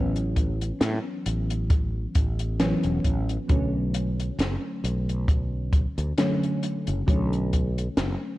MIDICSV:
0, 0, Header, 1, 4, 480
1, 0, Start_track
1, 0, Key_signature, 2, "minor"
1, 0, Tempo, 895522
1, 1875, Time_signature, 4, 2, 24, 8
1, 4493, End_track
2, 0, Start_track
2, 0, Title_t, "FM electric piano"
2, 0, Program_c, 0, 5
2, 0, Control_c, 0, 64, 127
2, 0, Note_on_c, 0, 52, 81
2, 0, Note_on_c, 0, 54, 71
2, 0, Note_on_c, 0, 59, 71
2, 0, Note_on_c, 0, 61, 87
2, 1365, Note_off_c, 0, 52, 0
2, 1367, Note_off_c, 0, 54, 0
2, 1370, Note_off_c, 0, 59, 0
2, 1373, Note_off_c, 0, 61, 0
2, 1392, Note_on_c, 0, 52, 93
2, 1395, Note_on_c, 0, 54, 84
2, 1398, Note_on_c, 0, 59, 81
2, 1401, Note_on_c, 0, 61, 97
2, 1848, Note_off_c, 0, 52, 0
2, 1849, Note_off_c, 0, 54, 0
2, 1851, Note_off_c, 0, 59, 0
2, 1852, Note_off_c, 0, 61, 0
2, 1866, Note_on_c, 0, 50, 78
2, 1871, Note_on_c, 0, 54, 73
2, 1877, Note_on_c, 0, 57, 72
2, 1882, Control_c, 0, 64, 0
2, 1882, Note_on_c, 0, 61, 85
2, 1978, Control_c, 0, 64, 127
2, 3285, Note_off_c, 0, 50, 0
2, 3287, Note_off_c, 0, 54, 0
2, 3290, Note_off_c, 0, 57, 0
2, 3293, Note_off_c, 0, 61, 0
2, 3309, Note_on_c, 0, 50, 90
2, 3311, Note_on_c, 0, 54, 82
2, 3315, Note_on_c, 0, 57, 82
2, 3318, Note_on_c, 0, 61, 100
2, 3767, Note_off_c, 0, 50, 0
2, 3767, Note_off_c, 0, 54, 0
2, 3769, Note_off_c, 0, 57, 0
2, 3771, Note_off_c, 0, 61, 0
2, 3787, Note_on_c, 0, 50, 79
2, 3791, Note_on_c, 0, 54, 74
2, 3796, Note_on_c, 0, 57, 73
2, 3802, Note_on_c, 0, 61, 85
2, 4493, Note_off_c, 0, 50, 0
2, 4493, Note_off_c, 0, 54, 0
2, 4493, Note_off_c, 0, 57, 0
2, 4493, Note_off_c, 0, 61, 0
2, 4493, End_track
3, 0, Start_track
3, 0, Title_t, "Fretless electric bass"
3, 0, Program_c, 1, 35
3, 0, Note_on_c, 1, 33, 94
3, 379, Note_off_c, 1, 33, 0
3, 432, Note_on_c, 1, 45, 100
3, 523, Note_off_c, 1, 45, 0
3, 676, Note_on_c, 1, 33, 81
3, 1100, Note_off_c, 1, 33, 0
3, 1155, Note_on_c, 1, 33, 75
3, 1459, Note_off_c, 1, 33, 0
3, 1524, Note_on_c, 1, 28, 91
3, 1599, Note_off_c, 1, 28, 0
3, 1631, Note_on_c, 1, 33, 87
3, 1803, Note_off_c, 1, 33, 0
3, 1874, Note_on_c, 1, 35, 96
3, 2299, Note_off_c, 1, 35, 0
3, 2351, Note_on_c, 1, 30, 100
3, 2442, Note_off_c, 1, 30, 0
3, 2593, Note_on_c, 1, 35, 84
3, 3138, Note_off_c, 1, 35, 0
3, 3204, Note_on_c, 1, 38, 85
3, 3279, Note_off_c, 1, 38, 0
3, 3686, Note_on_c, 1, 30, 82
3, 3760, Note_off_c, 1, 30, 0
3, 3794, Note_on_c, 1, 35, 95
3, 4218, Note_off_c, 1, 35, 0
3, 4274, Note_on_c, 1, 30, 99
3, 4364, Note_off_c, 1, 30, 0
3, 4493, End_track
4, 0, Start_track
4, 0, Title_t, "Drums"
4, 84, Note_on_c, 9, 42, 54
4, 138, Note_off_c, 9, 42, 0
4, 194, Note_on_c, 9, 36, 59
4, 195, Note_on_c, 9, 42, 79
4, 248, Note_off_c, 9, 36, 0
4, 248, Note_off_c, 9, 42, 0
4, 328, Note_on_c, 9, 42, 61
4, 382, Note_off_c, 9, 42, 0
4, 433, Note_on_c, 9, 38, 126
4, 434, Note_on_c, 9, 42, 90
4, 487, Note_off_c, 9, 38, 0
4, 487, Note_off_c, 9, 42, 0
4, 675, Note_on_c, 9, 42, 89
4, 728, Note_off_c, 9, 42, 0
4, 805, Note_on_c, 9, 42, 65
4, 859, Note_off_c, 9, 42, 0
4, 911, Note_on_c, 9, 42, 85
4, 913, Note_on_c, 9, 36, 121
4, 965, Note_off_c, 9, 42, 0
4, 966, Note_off_c, 9, 36, 0
4, 1152, Note_on_c, 9, 42, 87
4, 1155, Note_on_c, 9, 36, 107
4, 1206, Note_off_c, 9, 42, 0
4, 1208, Note_off_c, 9, 36, 0
4, 1282, Note_on_c, 9, 42, 67
4, 1336, Note_off_c, 9, 42, 0
4, 1392, Note_on_c, 9, 42, 87
4, 1393, Note_on_c, 9, 38, 123
4, 1446, Note_off_c, 9, 38, 0
4, 1446, Note_off_c, 9, 42, 0
4, 1519, Note_on_c, 9, 42, 52
4, 1572, Note_off_c, 9, 42, 0
4, 1631, Note_on_c, 9, 36, 59
4, 1632, Note_on_c, 9, 42, 82
4, 1685, Note_off_c, 9, 36, 0
4, 1686, Note_off_c, 9, 42, 0
4, 1764, Note_on_c, 9, 42, 61
4, 1818, Note_off_c, 9, 42, 0
4, 1872, Note_on_c, 9, 42, 76
4, 1874, Note_on_c, 9, 36, 102
4, 1926, Note_off_c, 9, 42, 0
4, 1927, Note_off_c, 9, 36, 0
4, 2112, Note_on_c, 9, 42, 88
4, 2166, Note_off_c, 9, 42, 0
4, 2249, Note_on_c, 9, 42, 59
4, 2303, Note_off_c, 9, 42, 0
4, 2354, Note_on_c, 9, 42, 78
4, 2360, Note_on_c, 9, 38, 113
4, 2407, Note_off_c, 9, 42, 0
4, 2414, Note_off_c, 9, 38, 0
4, 2597, Note_on_c, 9, 42, 81
4, 2650, Note_off_c, 9, 42, 0
4, 2729, Note_on_c, 9, 42, 56
4, 2783, Note_off_c, 9, 42, 0
4, 2831, Note_on_c, 9, 36, 106
4, 2834, Note_on_c, 9, 42, 81
4, 2884, Note_off_c, 9, 36, 0
4, 2888, Note_off_c, 9, 42, 0
4, 3069, Note_on_c, 9, 36, 97
4, 3071, Note_on_c, 9, 42, 78
4, 3123, Note_off_c, 9, 36, 0
4, 3124, Note_off_c, 9, 42, 0
4, 3205, Note_on_c, 9, 42, 58
4, 3258, Note_off_c, 9, 42, 0
4, 3311, Note_on_c, 9, 42, 85
4, 3314, Note_on_c, 9, 38, 114
4, 3364, Note_off_c, 9, 42, 0
4, 3368, Note_off_c, 9, 38, 0
4, 3448, Note_on_c, 9, 42, 50
4, 3502, Note_off_c, 9, 42, 0
4, 3553, Note_on_c, 9, 42, 78
4, 3607, Note_off_c, 9, 42, 0
4, 3682, Note_on_c, 9, 42, 65
4, 3736, Note_off_c, 9, 42, 0
4, 3794, Note_on_c, 9, 36, 102
4, 3798, Note_on_c, 9, 42, 75
4, 3848, Note_off_c, 9, 36, 0
4, 3851, Note_off_c, 9, 42, 0
4, 3928, Note_on_c, 9, 42, 48
4, 3982, Note_off_c, 9, 42, 0
4, 4036, Note_on_c, 9, 42, 77
4, 4038, Note_on_c, 9, 36, 56
4, 4089, Note_off_c, 9, 42, 0
4, 4092, Note_off_c, 9, 36, 0
4, 4170, Note_on_c, 9, 42, 64
4, 4224, Note_off_c, 9, 42, 0
4, 4272, Note_on_c, 9, 38, 115
4, 4273, Note_on_c, 9, 42, 88
4, 4326, Note_off_c, 9, 38, 0
4, 4326, Note_off_c, 9, 42, 0
4, 4493, End_track
0, 0, End_of_file